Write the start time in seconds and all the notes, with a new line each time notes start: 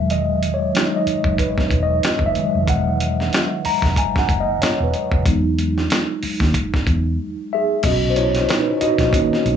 Already playing: E1 D#3 F#3 G#3 E5
0.10 D#5, closed hi-hat
0.43 closed hi-hat
0.54 C#5
0.74 F#3 G#3 D#4, snare, closed hi-hat
0.96 D#5
1.07 muted fingered electric bass stroke, closed hi-hat
1.24 F#1, kick
1.38 B4, kick, closed hi-hat
1.58 kick, snare
1.71 E1, kick, closed hi-hat
1.83 D#5
2.03 muted fingered electric bass stroke, snare, closed hi-hat
2.19 F#1, kick
2.26 E5
2.35 D#3 F#3 G#3, closed hi-hat
2.55 F1
2.68 E1 F#5, kick, closed hi-hat
3.00 closed hi-hat
3.20 snare
3.33 snare, closed hi-hat
3.65 A#5, muted fingered electric bass stroke, open hi-hat
3.82 E1, kick, snare
3.96 G#5, kick, closed hi-hat
4.16 F#5, kick, snare
4.29 F#1, kick, closed hi-hat
4.40 D#5
4.62 C#5, muted fingered electric bass stroke, snare, closed hi-hat
4.80 E1 B4
4.94 closed hi-hat
5.12 F1, kick
5.26 E2 F#3 G#3 D#4, kick, closed hi-hat
5.59 closed hi-hat
5.78 snare
5.90 snare, closed hi-hat
6.23 muted fingered electric bass stroke, open hi-hat
6.40 D#2, kick, snare
6.54 kick, closed hi-hat
6.74 kick, snare
6.87 E2, kick, closed hi-hat
7.53 G#4 E5
7.83 B1 A#2 C#3 C#4 F#4 D#5, kick, closed hi-hat, crash
8.10 C5
8.16 E4 C#5, closed hi-hat
8.35 snare, closed hi-hat
8.49 D#4 B4, snare, closed hi-hat
8.81 F#4 D#5, muted fingered electric bass stroke, closed hi-hat
8.98 A#1, kick, snare, closed hi-hat
9.13 D#3 A#3 C#4, kick, closed hi-hat
9.33 snare
9.46 B1, closed hi-hat